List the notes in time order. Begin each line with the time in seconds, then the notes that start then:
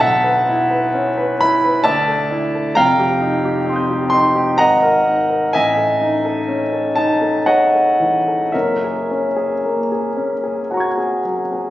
0.00 B1 E5 F#5 A5
0.24 B4
0.49 E4
0.70 B4
0.94 C#4
1.18 B4
1.41 E4 B5
1.64 B4
1.84 D2 D5 E5 A5
2.08 A4
2.31 E4
2.55 A4
2.75 F1 F2 F5 G5 A#5
3.00 G4
3.21 D#4
3.45 G4
3.66 C4 G5 C6
3.73 D#6 G6
3.91 G4
4.10 D#4 C6
4.35 G4
4.58 G#1 D#5 F#5 A#5
4.83 A#4
5.05 D#4
5.30 A#4
5.53 A1 D#5 E5 G#5
5.77 A4
6.01 D#4
6.25 A4
6.48 C#4
6.73 A4
6.96 D#4 A5
7.22 A4
7.46 G#4 C#5 D#5 F#5
7.74 A4
8.00 E3
8.28 A4
8.52 F#1 A#4 C#5 E5
8.84 G#4
9.11 C#4
9.36 G#4
9.66 A#3
9.92 G#4
10.17 C#4
10.43 G#4
10.71 F#4 F#5 A#5
10.77 C#6 G#6
10.98 G#4
11.24 F#3
11.52 G#4